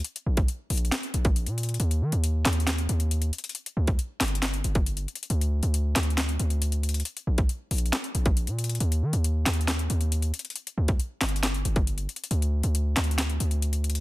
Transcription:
0.04 closed hi-hat
0.16 closed hi-hat
0.26 A#1
0.37 kick, closed hi-hat
0.48 closed hi-hat
0.70 A#1, closed hi-hat, open hi-hat
0.77 closed hi-hat
0.85 closed hi-hat
0.92 snare, clap, closed hi-hat
1.03 closed hi-hat
1.14 A#1, closed hi-hat
1.25 kick, closed hi-hat
1.36 closed hi-hat
1.46 A#2, closed hi-hat
1.58 closed hi-hat
1.63 closed hi-hat
1.69 closed hi-hat
1.74 closed hi-hat
1.80 D#2, closed hi-hat
1.91 closed hi-hat
2.02 D#3
2.12 D#2, closed hi-hat
2.24 closed hi-hat
2.45 D#2, snare, clap, closed hi-hat
2.53 closed hi-hat
2.60 closed hi-hat
2.67 snare, clap, closed hi-hat
2.78 closed hi-hat
2.89 D#2, closed hi-hat
3.00 closed hi-hat
3.11 closed hi-hat
3.22 closed hi-hat
3.33 closed hi-hat
3.38 closed hi-hat
3.44 closed hi-hat
3.49 closed hi-hat
3.55 closed hi-hat
3.66 closed hi-hat
3.77 D2
3.87 kick, closed hi-hat
3.99 closed hi-hat
4.21 G1, snare, clap, closed hi-hat, open hi-hat
4.28 closed hi-hat
4.35 closed hi-hat
4.42 snare, clap, closed hi-hat
4.54 closed hi-hat
4.64 G1, closed hi-hat
4.75 kick, closed hi-hat
4.86 closed hi-hat
4.97 closed hi-hat
5.08 closed hi-hat
5.15 closed hi-hat
5.23 closed hi-hat
5.30 D2, closed hi-hat
5.41 closed hi-hat
5.63 D2, closed hi-hat
5.74 closed hi-hat
5.96 D2, snare, clap, closed hi-hat
6.03 closed hi-hat
6.10 closed hi-hat
6.18 snare, clap, closed hi-hat
6.29 closed hi-hat
6.39 D2, closed hi-hat
6.50 closed hi-hat
6.62 closed hi-hat
6.72 closed hi-hat
6.83 closed hi-hat
6.89 closed hi-hat
6.94 closed hi-hat
7.00 closed hi-hat
7.05 closed hi-hat
7.17 closed hi-hat
7.27 A#1
7.38 kick, closed hi-hat
7.49 closed hi-hat
7.71 A#1, closed hi-hat, open hi-hat
7.78 closed hi-hat
7.86 closed hi-hat
7.93 snare, clap, closed hi-hat
8.04 closed hi-hat
8.15 A#1, closed hi-hat
8.26 kick, closed hi-hat
8.37 closed hi-hat
8.47 A#2, closed hi-hat
8.59 closed hi-hat
8.64 closed hi-hat
8.69 closed hi-hat
8.75 closed hi-hat
8.80 D#2, closed hi-hat
8.92 closed hi-hat
9.02 D#3
9.13 D#2, closed hi-hat
9.24 closed hi-hat
9.46 D#2, snare, clap, closed hi-hat
9.53 closed hi-hat
9.61 closed hi-hat
9.68 snare, clap, closed hi-hat
9.79 closed hi-hat
9.90 D#2, closed hi-hat
10.01 closed hi-hat
10.12 closed hi-hat
10.22 closed hi-hat
10.34 closed hi-hat
10.39 closed hi-hat
10.45 closed hi-hat
10.50 closed hi-hat
10.56 closed hi-hat
10.67 closed hi-hat
10.78 D2
10.88 kick, closed hi-hat
11.00 closed hi-hat
11.21 G1, snare, clap, closed hi-hat, open hi-hat
11.29 closed hi-hat
11.36 closed hi-hat
11.43 snare, clap, closed hi-hat
11.54 closed hi-hat
11.65 G1, closed hi-hat
11.76 kick, closed hi-hat
11.87 closed hi-hat
11.98 closed hi-hat
12.09 closed hi-hat
12.16 closed hi-hat
12.24 closed hi-hat
12.31 D2, closed hi-hat
12.42 closed hi-hat
12.63 D2, closed hi-hat
12.75 closed hi-hat
12.96 D2, snare, clap, closed hi-hat
13.04 closed hi-hat
13.11 closed hi-hat
13.18 snare, clap, closed hi-hat
13.30 closed hi-hat
13.40 D2, closed hi-hat
13.51 closed hi-hat
13.62 closed hi-hat
13.73 closed hi-hat
13.84 closed hi-hat
13.90 closed hi-hat
13.95 closed hi-hat

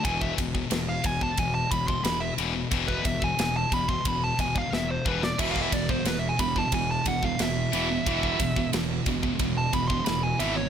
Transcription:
0.04 E1 E2 B2 E3 G#5, kick, ride
0.21 E5, kick
0.38 E1 E2 B2, kick, ride
0.55 E2 B2, kick
0.70 E1 E2 B2, snare, ride
0.89 F5
1.04 E1 E2 B2 G#5, kick, ride
1.21 E2 B2 A5, kick
1.37 E1 E2 B2 G#5, kick, ride
1.55 A5
1.71 E1 E2 B2 B5, kick, ride
1.88 E2 B2 C6, kick
2.04 E1 E2 B2 B5, snare, ride
2.21 E5
2.38 E1 E2 B2 E3, ride
2.55 E2 B2
2.71 E1 E2 B2 E3, kick, ride
2.88 B4, kick
3.05 E1 E2 B2 E5, kick, ride
3.22 E2 B2 G#5, kick
3.39 E1 E2 B2 G#5, snare, ride
3.57 A5
3.72 E1 E2 B2 B5, kick, ride
3.88 E2 B2 C6, kick
4.05 E1 E2 B2 B5, kick, ride
4.24 A5
4.39 E1 E2 B2 G#5, kick, ride
4.55 E2 B2 F5, kick
4.72 E1 E2 B2 E5, snare
4.91 C5
5.05 E1 E2 B2 E3 B4, kick
5.23 E2 B2 D5, snare
5.39 E1 E2 B2 E3 E5, kick, crash, ride
5.51 F5
5.56 kick
5.62 E5
5.72 E1 E2 B2 D5, kick, ride
5.89 E2 B2 C5, kick
6.05 E1 E2 B2 B4, snare, ride
6.19 E5
6.29 G#5
6.39 E1 E2 B2 B5, kick, ride
6.56 E2 B2 A5, kick
6.72 E1 E2 B2 G#5, kick, ride
6.91 A5
7.06 E1 E2 B2 F#5, kick, ride
7.23 E2 B2 F5, kick
7.39 E1 E2 B2 E5, snare, ride
7.72 E1 E2 B2 E3, ride
7.90 E2 B2
8.06 E1 E2 B2 E3, kick, ride
8.23 kick
8.39 E1 E2 B2, kick, ride
8.56 E2 B2, kick
8.73 E1 E2 B2, snare, ride
9.06 E1 E2 B2, kick, ride
9.23 E2 B2, kick
9.39 E1 E2 B2, kick, ride
9.58 A5
9.73 E1 E2 B2 B5, kick, ride
9.88 E2 B2 C6, kick
10.05 E1 E2 B2 B5, snare, ride
10.23 G#5
10.39 G#1 E2 B2 E3 E5, ride
10.55 E2 B2 C#5

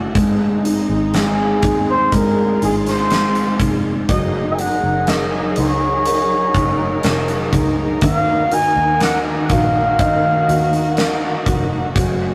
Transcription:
Already playing: F#1 A3 C#4 E4 F#4
0.14 G#1 G#3 C4 D#4, kick, closed hi-hat
0.64 D#4, closed hi-hat
0.89 G#1
1.13 G#3 G#4, snare, closed hi-hat
1.62 D#2 D#4, kick, closed hi-hat
1.90 C5
2.12 G#3 F4 A#4, kick, closed hi-hat
2.61 G#1 D#4 G#4, closed hi-hat
2.86 C5, snare, closed hi-hat
3.10 G#3, snare, closed hi-hat
3.35 closed hi-hat
3.60 F1 D#4, kick, closed hi-hat
4.09 F#1 F#3 C#4 D#4 G#4 A#4 D#5, kick, closed hi-hat
4.53 G#5
4.59 D#4 F#5, closed hi-hat
4.83 F#1
5.07 A#4 D#5, snare, closed hi-hat
5.56 C#2 D#4 C#5, closed hi-hat
6.05 A#4, closed hi-hat
6.54 F#1 D#4, kick, closed hi-hat
7.03 F1 A#4, snare, closed hi-hat
7.28 closed hi-hat
7.53 C#2 D#4, kick, closed hi-hat
8.01 D#2 D#3 F#4 F5, kick, closed hi-hat
8.52 F#4 G#5, closed hi-hat
8.76 D#2
9.00 A#4 F#5, snare, closed hi-hat
9.44 F#5
9.50 A#1 F#4 F5, kick, closed hi-hat
9.99 D#5, kick, closed hi-hat
10.48 D#2 F#4, closed hi-hat
10.73 closed hi-hat
10.97 A#4, snare, closed hi-hat
11.46 F1 F#4, kick, closed hi-hat
11.95 F#1 F#3 G#3 C#4, kick, closed hi-hat

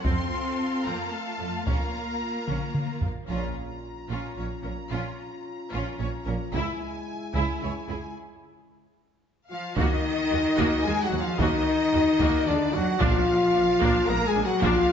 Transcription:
0.04 F2 C4 F4 A4 F5 C6, taiko
0.84 F2 A#3 C4 A#5
1.12 A3 A5
1.39 F2 F3
1.65 A#1 A#3 C#4 A#4 A#5, taiko
2.48 A#1 C#4, taiko mid
2.74 taiko mid
3.01 A#1 F3, taiko low
3.28 A#1 A#2 C#4 F4 A#5, taiko
4.10 A#1 A#2 C#4 F4
4.37 A#1 A#2 C#4 C#5
4.63 A#1 A#2 C#4 A#4
4.91 A#1 A#2 C#4 F4
5.71 A#1 A#2 C#4 F4
5.99 A#1 A#2 C#4 C#5
6.26 A#1 A#2 C#4 A#4
6.53 C#2 C#3 G#3 E4 G#5, taiko
7.34 C#2 C#3 E4, taiko
7.61 C#2 C#3 E4 C#5
7.88 C#2 C#3 E4 G#4
9.50 F3 F4 F5
9.77 D#2 D#3 A#3 D#4 F#4 D#5, taiko
10.31 D#2 A#3 F#4
10.58 D#2 A#3 F#4, taiko
10.85 D#2 G#3 F4 G#4 G#5
11.03 F#3 F#4 F#5
11.12 D#2 A#3 F#4
11.21 F3 F4 F5
11.39 D#2 D#3 A#3 D#4 F#4 D#5, taiko
11.93 D#2 A#3 F#4
12.20 D#2 A#3 F#4, taiko
12.45 D#2 D3 G#3 D4 F4 D5
12.73 D#2 F#3 A#3 F#4 F#5
13.00 A#1 A#2 F3 A#3 D4 F4 F5, taiko
13.54 A#1 A#3 D4
13.81 A#1 A#3 D4, taiko
14.07 A#1 G#3 A#3 B3 A#4 A#5
14.27 G#3 G#4 G#5
14.35 A#1 A#3 D4
14.45 F#3 F#4 F#5
14.62 A#1 F3 A#3 D4 F4 F5, taiko

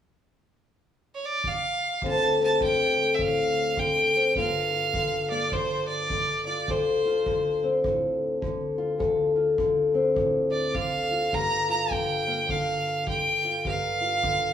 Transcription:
1.14 C#5
1.25 D5
1.44 F5, kick
2.02 D2 D3 A3 C4, kick
2.06 F4 A5
2.40 C4 A5
2.61 D3 G5, kick
2.98 A3
3.14 E5
3.19 A2 F5, kick
3.77 D3 G5, kick
4.16 C4
4.35 G2 D3 A#3 F4 A#4 F5, kick
4.74 F4
4.94 D3, kick
5.31 A#3 D5
5.52 D3 C5, kick
5.87 D5
6.10 D3, kick
6.46 F4 D5
6.68 D2 A4 C5, kick
7.05 F4
7.26 D3, kick
7.63 C4
7.84 A2, kick
8.41 D3, kick
8.78 F4
8.98 D2 A4, kick
9.36 F4
9.58 D3, kick
9.94 C4
10.15 A2, kick
10.51 D5
10.75 D3 F5, kick
11.11 F4
11.32 G2 D3 A#3 F4 A#4 A#5, kick
11.70 F4 A#5
11.91 D3 G5, kick
12.27 A#3
12.49 D3 F5, kick
13.07 D3 G5, kick
13.45 F4
13.65 G2 A#4 F5, kick
14.01 F4
14.23 D3, kick

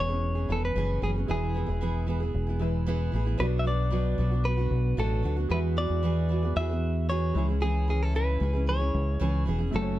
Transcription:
Already playing: E1 B3 E4 C#5
0.00 C#5
0.09 B3 C#4 G#4
0.35 B3 C#4 G#4
0.49 E1 E3 B3 C#4 G#4 A4
0.65 B4
0.75 F#1 E3 B3 C#4 G#4
1.02 F#1 E3 B3 C#4 G#4
1.16 B3 C#4 G#4
1.26 E1 E3 G#3 B3 E4
1.30 G#4 B4
1.54 E3 B3 E4 G#4
1.66 E1 B3 E4 G#4
1.81 E3 B3 E4 G#4
2.07 E3 B3 E4 G#4
2.20 B3 E4 G#4
2.34 E1
2.47 B3 E4 G#4
2.59 E3 G#3 B3 E4 G#4 B4
2.87 E3 B3 E4 G#4
3.12 A1 E3 B3 E4 G#4
3.25 B3 E4 G#4
3.38 B1 B2 F#3 B3 D4 F#4 B4 D5
3.59 E5
3.64 F#3 B3 D4 F#4 D5
3.90 B2 F#3 B3 D4 F#4
4.18 B1 F#3 B3 D4 F#4
4.31 B3 D4 F#4
4.44 F#3 B3 D4 F#4 B4
4.57 B3 D4 F#4
4.71 B1
4.97 A1 B2 F#3 B3 D4 F#4 A4
5.23 D2 F#3 B3 D4 F#4
5.37 B3 D4 F#4
5.48 E2 E3 G#3 B3 F#4 G#4 B4
5.53 E5
5.76 E3 B3 F#4 G#4 D5
5.90 E2
6.03 E3 B3 F#4 G#4
6.29 E3 B3 F#4 G#4
6.43 B3 F#4 G#4
6.56 E2 E3 B3 F#4 G#4 E5
6.69 B3 F#4 G#4
7.09 E3 B3 F#4 G#4 C#5
7.33 C#2 E3 G#3 C#4 E4
7.37 G#4 C#5
7.48 C#4 E4 G#4
7.61 C#3 E3 C#4 E4 G#4
7.88 E3 C#4 E4 G#4
8.03 A4
8.14 C#3 E3 C#4 E4 G#4 B4
8.40 C#2 E3 C#4 E4 G#4
8.53 C#4 E4 G#4
8.66 E3 C#4 E4 G#4 C#5
8.79 C#4 E4 G#4
8.94 C#2
9.20 C#2 C#3 E3 C#4 E4 G#4
9.45 E1 E3 C#4 E4 G#4
9.58 C#4 E4 G#4
9.71 F#1 F#2 C#3 F#3 A3 C#4 F#4
9.75 A4 C5
9.82 C#5

